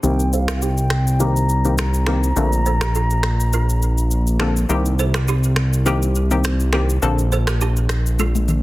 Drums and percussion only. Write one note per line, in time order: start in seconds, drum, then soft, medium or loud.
0.03 shaker medium
0.20 shaker soft
0.33 shaker medium
0.48 finger snap medium
0.48 cross-stick medium
0.48 shaker soft
0.62 shaker medium
0.78 shaker soft
0.90 finger snap medium
0.90 cross-stick medium
1.07 shaker medium
1.20 shaker medium
1.36 shaker medium
1.49 shaker soft
1.65 shaker soft
1.78 finger snap medium
1.78 cross-stick medium
1.78 shaker medium
1.94 shaker medium
2.06 finger snap medium
2.06 cross-stick medium
2.23 shaker medium
2.36 shaker medium
2.53 shaker soft
2.66 shaker medium
2.81 finger snap medium
2.81 cross-stick medium
2.81 shaker soft
2.95 shaker medium
3.10 shaker soft
3.23 finger snap medium
3.23 cross-stick medium
3.40 shaker medium
3.53 shaker medium
3.69 shaker medium
3.82 shaker soft
3.98 shaker soft
4.11 shaker medium
4.27 shaker medium
4.40 finger snap medium
4.40 cross-stick medium
4.57 shaker medium
4.70 shaker medium
4.86 shaker soft
4.99 shaker medium
5.14 finger snap medium
5.14 cross-stick loud
5.14 shaker soft
5.28 shaker medium
5.44 shaker soft
5.56 finger snap medium
5.56 cross-stick medium
5.73 shaker medium
5.86 shaker medium
6.02 shaker soft
6.15 shaker soft
6.31 shaker soft
6.44 finger snap medium
6.44 cross-stick medium
6.44 shaker medium
6.60 shaker soft
6.73 finger snap medium
6.73 cross-stick medium
6.90 shaker medium
7.02 shaker medium
7.19 shaker soft
7.32 shaker medium
7.47 finger snap medium
7.47 cross-stick loud
7.47 shaker soft
7.61 shaker medium
7.77 shaker soft
7.89 finger snap medium
7.89 cross-stick medium
7.89 shaker soft
8.06 shaker medium
8.19 high tom soft
8.19 shaker medium
8.35 high tom soft
8.35 shaker medium
8.48 mid tom medium
8.48 shaker soft